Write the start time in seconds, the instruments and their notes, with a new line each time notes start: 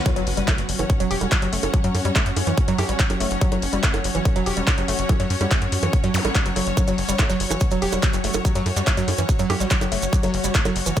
Already playing: string section C#4 F#4 B4 F#5
0.06 synth arpeggio sound F#3, ambient pad F#3 C#4, kick, closed hi-hat, impact, high bongo
0.16 analog synth bass F#1, synth arpeggio sound F#3, closed hi-hat
0.27 analog synth bass F#1, open hi-hat
0.37 analog synth bass F#1, synth arpeggio sound G3, closed hi-hat
0.48 synth arpeggio sound A3, kick, clap, closed hi-hat, high bongo
0.58 analog synth bass F#1, closed hi-hat
0.69 analog synth bass F#1, open hi-hat
0.78 analog synth bass F#1, synth arpeggio sound E3, string section C#5, closed hi-hat, high bongo
0.90 kick, closed hi-hat
1.00 analog synth bass E1, synth arpeggio sound F#3, closed hi-hat
1.11 analog synth bass E1, synth arpeggio sound G4, open hi-hat
1.21 analog synth bass E1, synth arpeggio sound G3, closed hi-hat, high bongo
1.32 kick, clap, closed hi-hat
1.42 analog synth bass F#1, synth arpeggio sound F#3, closed hi-hat
1.53 analog synth bass F#1, synth arpeggio sound A3, open hi-hat
1.63 analog synth bass F#1, closed hi-hat, high bongo
1.74 synth arpeggio sound F#3, kick, closed hi-hat
1.84 analog synth bass F#2, synth arpeggio sound F#3, closed hi-hat
1.95 analog synth bass F#2, open hi-hat, high bongo
2.05 analog synth bass F#2, synth arpeggio sound G3, closed hi-hat
2.16 synth arpeggio sound A3, kick, clap, closed hi-hat
2.26 analog synth bass F#2, closed hi-hat
2.37 analog synth bass F#2, open hi-hat, high bongo
2.47 analog synth bass F#2, synth arpeggio sound E3, closed hi-hat
2.57 kick, closed hi-hat
2.68 analog synth bass F#2, synth arpeggio sound F#3, closed hi-hat
2.78 analog synth bass F#2, synth arpeggio sound G4, open hi-hat, high bongo
2.89 analog synth bass A1, synth arpeggio sound G3, closed hi-hat
2.99 kick, clap, closed hi-hat
3.10 analog synth bass F#1, synth arpeggio sound F#3, closed hi-hat, high bongo
3.20 analog synth bass F#1, synth arpeggio sound A3, open hi-hat
3.31 analog synth bass F#1, closed hi-hat
3.41 synth arpeggio sound F#3, kick, closed hi-hat
3.52 analog synth bass F#1, synth arpeggio sound F#3, closed hi-hat, high bongo
3.62 analog synth bass F#1, open hi-hat
3.73 analog synth bass F#1, synth arpeggio sound G3, closed hi-hat
3.83 synth arpeggio sound A3, kick, clap, closed hi-hat
3.94 analog synth bass F#1, closed hi-hat, high bongo
4.04 analog synth bass F#1, open hi-hat
4.15 analog synth bass F#1, synth arpeggio sound E3, closed hi-hat
4.25 kick, closed hi-hat, high bongo
4.36 analog synth bass E1, synth arpeggio sound F#3, closed hi-hat
4.46 analog synth bass E1, synth arpeggio sound G4, open hi-hat
4.57 analog synth bass E1, synth arpeggio sound G3, closed hi-hat
4.67 kick, clap, closed hi-hat, high bongo
4.78 analog synth bass F#1, synth arpeggio sound F#3, closed hi-hat
4.88 analog synth bass F#1, synth arpeggio sound A3, open hi-hat
4.99 analog synth bass F#1, closed hi-hat
5.09 synth arpeggio sound F#3, kick, closed hi-hat, high bongo
5.20 analog synth bass F#2, synth arpeggio sound F#3, closed hi-hat
5.30 analog synth bass F#2, open hi-hat
5.41 analog synth bass F#2, synth arpeggio sound G3, closed hi-hat, high bongo
5.51 synth arpeggio sound A3, kick, clap, closed hi-hat
5.62 analog synth bass F#2, closed hi-hat
5.72 analog synth bass F#2, open hi-hat
5.83 analog synth bass F#2, synth arpeggio sound E3, closed hi-hat, high bongo
5.93 kick, closed hi-hat
6.04 analog synth bass F#2, synth arpeggio sound F#3, closed hi-hat
6.14 analog synth bass F#2, synth arpeggio sound F#3, open hi-hat, zap
6.25 analog synth bass A1, synth arpeggio sound G3, closed hi-hat, high bongo
6.35 synth arpeggio sound G3, kick, clap, closed hi-hat
6.46 analog synth bass F#1, synth arpeggio sound F#3, closed hi-hat
6.56 analog synth bass F#1, synth arpeggio sound F#3, open hi-hat, high bongo
6.67 analog synth bass F#1, closed hi-hat
6.77 synth arpeggio sound F#3, ambient pad F#4, kick, closed hi-hat, high bongo, maracas
6.88 analog synth bass F#1, synth arpeggio sound F#3, closed hi-hat, maracas
6.98 analog synth bass F#1, open hi-hat
7.09 analog synth bass F#1, synth arpeggio sound G3, closed hi-hat, maracas
7.18 synth arpeggio sound A3, kick, clap, closed hi-hat, high bongo, maracas
7.30 analog synth bass F#1, synth arpeggio sound F#3, closed hi-hat, maracas
7.40 analog synth bass F#1, open hi-hat
7.51 analog synth bass F#1, synth arpeggio sound E3, closed hi-hat, high bongo, maracas
7.60 kick, closed hi-hat, maracas
7.71 analog synth bass E1, synth arpeggio sound F#3, closed hi-hat, maracas
7.82 analog synth bass E1, synth arpeggio sound G4, open hi-hat
7.92 analog synth bass E1, synth arpeggio sound G3, closed hi-hat, high bongo, maracas
8.03 kick, clap, closed hi-hat, maracas
8.13 analog synth bass F#1, synth arpeggio sound F#3, closed hi-hat, maracas
8.24 analog synth bass F#1, synth arpeggio sound A3, open hi-hat
8.34 analog synth bass F#1, closed hi-hat, high bongo, maracas
8.45 synth arpeggio sound F#3, kick, closed hi-hat, maracas
8.55 analog synth bass F#2, synth arpeggio sound F#3, closed hi-hat, maracas
8.66 analog synth bass F#2, open hi-hat, high bongo
8.76 analog synth bass F#2, synth arpeggio sound G3, closed hi-hat, maracas
8.87 synth arpeggio sound A3, kick, clap, closed hi-hat, maracas
8.97 analog synth bass F#2, synth arpeggio sound F#3, closed hi-hat, maracas
9.08 analog synth bass F#2, open hi-hat, high bongo
9.18 analog synth bass F#2, synth arpeggio sound E3, closed hi-hat, maracas
9.29 kick, closed hi-hat, maracas
9.39 analog synth bass F#2, synth arpeggio sound F#3, closed hi-hat, maracas
9.50 analog synth bass F#2, synth arpeggio sound G4, open hi-hat, high bongo
9.60 analog synth bass A1, synth arpeggio sound G3, closed hi-hat, maracas
9.70 kick, clap, closed hi-hat, maracas
9.81 analog synth bass F#1, synth arpeggio sound F#3, closed hi-hat, high bongo, maracas
9.92 analog synth bass F#1, synth arpeggio sound A3, open hi-hat
10.02 analog synth bass F#1, closed hi-hat, maracas
10.13 synth arpeggio sound F#3, kick, closed hi-hat, maracas
10.23 analog synth bass F#1, synth arpeggio sound F#3, closed hi-hat, high bongo, maracas
10.34 analog synth bass F#1, open hi-hat
10.44 analog synth bass F#1, synth arpeggio sound G3, closed hi-hat, maracas
10.55 synth arpeggio sound A3, kick, clap, closed hi-hat, maracas
10.65 analog synth bass F#1, synth arpeggio sound F#3, closed hi-hat, high bongo, maracas
10.76 analog synth bass F#1, open hi-hat
10.86 analog synth bass F#1, synth arpeggio sound E3, closed hi-hat, maracas
10.97 kick, closed hi-hat, high bongo, maracas